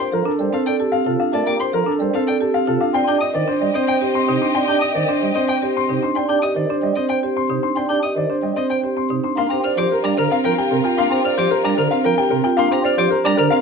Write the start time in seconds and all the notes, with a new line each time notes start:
0.00 C5
0.12 F3 A4 A#4
0.26 D4 A4
0.39 G3 A#4 C5
0.53 C4 A4 F5
0.66 A4 D5 G5
0.80 G4 A4
0.92 C4 F5
1.06 C3 F4 A4
1.20 D4 F5
1.33 A3 A#4 D5 A5
1.46 A#3 G4 A#4 D6
1.60 C5 C6
1.73 F3 A4 A#4
1.86 D4 A4
2.00 G3 A#4 C5
2.14 C4 A4 F5
2.27 A4 D5 G5
2.41 G4 A4
2.54 C4 F5
2.67 C3 F4 A4
2.81 D4 F5
2.93 C4 G4 D5 D#5 G5 C6
3.07 D4 G4 D5 G6
3.20 D#5 D#6
3.34 D#3 C5 D5
3.48 D4 C5
3.61 G3 D5 D#5
3.74 C4 C5 D#5
3.87 C5 G5
4.01 G4 C5
4.15 C4 C6
4.28 C3 D#4 C5
4.42 D4 C6
4.55 C4 D5 G5 C6
4.67 D4 G4 D5 G6
4.81 D#5 D#6
4.95 D#3 C5 D5
5.08 D4 C5
5.22 G3 D5 D#5
5.34 C4 C5 D#5
5.48 C5 G5
5.62 G4 C5
5.76 C4 C6
5.88 C3 D#4 C5
6.02 D4 C6
6.15 C4 D5 G5 C6
6.29 D4 G4 D5 G6
6.42 G4 D#5 D#6
6.55 D#3 C5 D5
6.69 D4 C5
6.82 G3 D5 D#5
6.95 C4 C5 D#5
7.09 C5 G5
7.23 G4 C5
7.36 C4 C6
7.49 C3 D#4 C5
7.63 D4 C6
7.75 C4 D5 G5 C6
7.89 D4 G4 D5 G6
8.02 G4 D#5 D#6
8.16 D#3 C5 D5
8.30 D4 C5
8.42 G3 D5 D#5
8.56 C4 C5 D#5
8.70 C5 G5
8.83 G4 C5
8.97 C4 C6
9.10 C3 D#4 C5
9.24 D4 C6
9.36 A#3 D4 F4 A#4 F5 C6
9.49 C4 G4 C5 A#5
9.63 C5 D5 F6
9.76 F3 G4 C5 D6
9.91 A#4
10.04 G3 D4 D5 A#5
10.17 D3 A#4 C5 F6
10.31 C4 F5
10.44 F3 A#4 G5
10.58 G4 G5
10.71 C3 C4 A#4
10.84 F4 G5
10.97 A#3 D4 F5 C6
11.10 C4 G4 C5 A#5
11.24 C5 D5 F6
11.37 F3 G4 C5 D6
11.51 A#4
11.64 G3 D4 D5 A#5
11.77 D3 A#4 C5 F6
11.91 C4 F5
12.04 F3 A#4 G5
12.18 G4 G5
12.30 C3 C4 A#4
12.44 F4 G5
12.57 A#3 D4 F5 C6
12.71 C4 G4 C5 A#5
12.84 C5 D5 F6
12.97 F3 G4 C5 D6
13.11 A#4
13.24 G3 D4 D5 A#5
13.37 D3 A#4 C5 F6
13.50 C4 F5